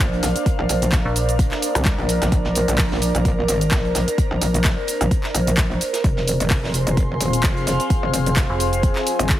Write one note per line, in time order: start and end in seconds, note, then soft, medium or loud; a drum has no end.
0.00 0.21 A#1 medium
0.00 6.87 D4 medium
0.00 6.00 A#4 medium
0.00 6.99 A#4 medium
0.00 6.00 C5 medium
0.00 6.00 D5 medium
0.00 3.26 F5 medium
0.00 snare loud
0.00 closed hi-hat medium
0.00 shaker soft
0.13 closed hi-hat soft
0.23 0.34 A#1 loud
0.23 snare soft
0.23 closed hi-hat medium
0.23 open hi-hat medium
0.23 shaker medium
0.36 closed hi-hat medium
0.36 closed hi-hat soft
0.36 shaker soft
0.46 kick loud
0.46 closed hi-hat medium
0.46 shaker soft
0.59 0.68 A#1 loud
0.69 1.03 A#1 loud
0.69 closed hi-hat medium
0.69 open hi-hat loud
0.69 shaker medium
0.82 closed hi-hat medium
0.82 closed hi-hat soft
0.82 shaker soft
0.92 kick loud
0.92 snare loud
0.92 clap loud
0.92 closed hi-hat medium
0.92 shaker soft
1.05 1.50 A#1 loud
1.16 open hi-hat medium
1.16 shaker medium
1.29 closed hi-hat medium
1.29 shaker soft
1.39 kick loud
1.39 closed hi-hat loud
1.39 closed hi-hat medium
1.39 shaker soft
1.51 snare medium
1.51 clap soft
1.62 closed hi-hat medium
1.62 open hi-hat loud
1.62 shaker medium
1.75 1.96 C2 loud
1.75 closed hi-hat medium
1.75 closed hi-hat soft
1.75 shaker soft
1.85 kick loud
1.85 snare loud
1.85 clap loud
1.85 closed hi-hat medium
1.85 shaker soft
1.98 2.20 A#1 loud
1.98 closed hi-hat soft
2.09 closed hi-hat medium
2.09 open hi-hat medium
2.09 shaker medium
2.22 2.30 A#1 loud
2.22 snare medium
2.22 closed hi-hat medium
2.22 shaker soft
2.32 2.66 A#1 loud
2.32 kick loud
2.32 closed hi-hat medium
2.32 shaker soft
2.45 snare soft
2.55 closed hi-hat medium
2.55 open hi-hat loud
2.55 shaker medium
2.68 3.13 A#1 medium
2.68 closed hi-hat medium
2.68 shaker soft
2.78 kick loud
2.78 snare loud
2.78 clap loud
2.78 closed hi-hat medium
2.78 open hi-hat medium
2.78 shaker soft
2.92 snare soft
3.02 closed hi-hat medium
3.02 open hi-hat medium
3.02 shaker medium
3.15 3.47 A#1 medium
3.15 closed hi-hat medium
3.15 shaker soft
3.25 kick loud
3.25 closed hi-hat medium
3.25 shaker soft
3.48 3.70 G#1 medium
3.48 closed hi-hat medium
3.48 open hi-hat loud
3.48 shaker medium
3.61 closed hi-hat medium
3.61 closed hi-hat soft
3.61 shaker soft
3.71 3.93 A#1 medium
3.71 kick loud
3.71 snare loud
3.71 clap loud
3.71 closed hi-hat medium
3.71 shaker soft
3.85 closed hi-hat soft
3.95 4.06 A#1 loud
3.95 snare soft
3.95 closed hi-hat medium
3.95 open hi-hat medium
3.95 shaker medium
4.07 closed hi-hat soft
4.07 closed hi-hat medium
4.07 shaker soft
4.18 kick loud
4.18 closed hi-hat medium
4.18 shaker soft
4.31 4.40 A#1 loud
4.41 4.75 A#1 medium
4.41 closed hi-hat medium
4.41 open hi-hat loud
4.41 shaker medium
4.54 closed hi-hat medium
4.54 closed hi-hat soft
4.54 shaker soft
4.64 kick loud
4.64 snare loud
4.64 clap loud
4.64 closed hi-hat medium
4.64 shaker soft
4.87 closed hi-hat medium
4.87 open hi-hat medium
4.87 shaker medium
5.01 5.10 A#1 loud
5.01 closed hi-hat medium
5.01 shaker soft
5.11 kick loud
5.11 closed hi-hat medium
5.11 shaker soft
5.24 snare soft
5.24 clap soft
5.34 5.79 A#1 loud
5.34 closed hi-hat medium
5.34 open hi-hat loud
5.34 shaker medium
5.47 closed hi-hat medium
5.47 closed hi-hat soft
5.47 shaker soft
5.57 kick loud
5.57 snare loud
5.57 clap loud
5.57 closed hi-hat medium
5.57 shaker soft
5.71 closed hi-hat soft
5.81 closed hi-hat medium
5.81 open hi-hat medium
5.81 shaker medium
5.93 snare soft
5.93 closed hi-hat medium
5.93 shaker soft
6.04 6.38 F1 loud
6.04 9.40 C4 medium
6.04 9.40 F4 medium
6.04 9.40 C5 medium
6.04 9.40 G#5 medium
6.04 kick loud
6.04 closed hi-hat medium
6.04 shaker soft
6.12 9.40 G#4 medium
6.17 snare soft
6.27 closed hi-hat medium
6.27 open hi-hat loud
6.27 shaker medium
6.38 6.85 F1 loud
6.38 9.40 C6 medium
6.38 closed hi-hat medium
6.38 shaker soft
6.50 kick loud
6.50 snare loud
6.50 clap loud
6.50 closed hi-hat medium
6.50 open hi-hat medium
6.50 shaker soft
6.64 snare medium
6.74 closed hi-hat medium
6.74 open hi-hat medium
6.74 shaker medium
6.87 7.19 F1 loud
6.87 closed hi-hat medium
6.87 shaker soft
6.97 kick loud
6.97 closed hi-hat medium
6.97 shaker soft
7.02 9.40 F5 medium
7.21 7.42 D#1 loud
7.21 closed hi-hat medium
7.21 open hi-hat loud
7.21 shaker medium
7.33 closed hi-hat soft
7.33 closed hi-hat medium
7.33 shaker soft
7.43 7.65 F1 medium
7.43 kick loud
7.43 snare loud
7.43 clap loud
7.43 closed hi-hat medium
7.43 shaker soft
7.57 closed hi-hat soft
7.67 7.78 F1 loud
7.67 snare soft
7.67 closed hi-hat medium
7.67 open hi-hat medium
7.67 shaker medium
7.80 closed hi-hat soft
7.80 closed hi-hat medium
7.80 shaker soft
7.90 kick loud
7.90 closed hi-hat medium
7.90 shaker soft
8.03 8.12 F1 loud
8.13 8.48 F1 loud
8.13 closed hi-hat medium
8.13 open hi-hat loud
8.13 shaker medium
8.26 closed hi-hat medium
8.26 closed hi-hat soft
8.26 shaker soft
8.36 kick loud
8.36 snare loud
8.36 clap loud
8.36 closed hi-hat medium
8.36 shaker soft
8.50 8.94 F1 loud
8.60 open hi-hat loud
8.60 shaker medium
8.73 closed hi-hat medium
8.73 shaker soft
8.83 kick loud
8.83 closed hi-hat medium
8.83 shaker soft
8.96 snare medium
8.96 clap soft
9.07 closed hi-hat medium
9.07 open hi-hat loud
9.07 shaker medium
9.19 9.40 G1 loud
9.19 closed hi-hat soft
9.19 closed hi-hat medium
9.19 shaker soft
9.29 kick loud
9.29 snare loud
9.29 clap loud
9.29 closed hi-hat medium
9.29 shaker soft